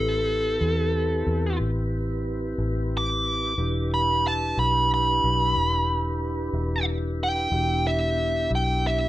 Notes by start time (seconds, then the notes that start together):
Already playing: A1 C4 E4 G4 A4 B4
0.61 E2
1.27 E2
1.60 A1
2.58 A1
2.97 D6
3.58 E1 D4 E4 G4 B4
3.94 B5
4.28 A5
4.57 B1 B5
4.94 B5
5.24 B1
5.56 E1
6.53 E1
7.23 G5
7.50 E1 B3 D4 E4 G4
7.87 E5
8.51 B1
8.55 G5
8.87 E5